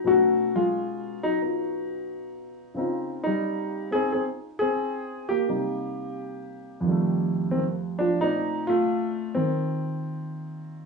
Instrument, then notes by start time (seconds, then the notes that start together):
grand piano
0.04 B2 F#3 A3 C#4 D#4 F#4
0.56 G#3 F4
1.23 F#3 D#4
1.41 B3 D#4 F4
2.75 C#3 C4 D#4
2.80 F4
3.23 G3 D#4
3.91 C4 D#4 G#4
4.12 C4 G#4
4.59 C4 G#4
5.29 A#3 G4
5.48 C3 G3 A#3 D#4
6.81 F2 D#3
6.88 G3 A3
7.51 D#3 C4
7.99 F3 D4
8.19 A#2 A3 C4 D#4
8.24 D5
8.67 A3 F4
9.35 D#3 C4